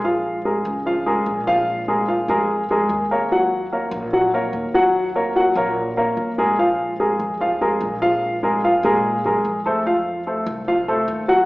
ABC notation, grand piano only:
X:1
M:4/4
L:1/8
Q:1/4=147
K:Bbm
V:1 name="Grand piano"
[F,Ff]2 [A,AB]2 [F,Ff] [A,AB]2 [F,Ff]- | [F,Ff] [A,AB] [F,Ff] [A,AB]2 [A,AB]2 [B,Bd] | [G,Gg]2 [B,Bd]2 [G,Gg] [B,Bd]2 [G,Gg]- | [G,Gg] [B,Bd] [G,Gg] [B,Bd]2 [B,Bd]2 [A,AB] |
[F,Ff]2 [A,AB]2 [F,Ff] [A,AB]2 [F,Ff]- | [F,Ff] [A,AB] [F,Ff] [A,AB]2 [A,AB]2 [=A,=Ac] | [F,Ff]2 [=A,=Ac]2 [F,Ff] [A,Ac]2 [G,Gg] |]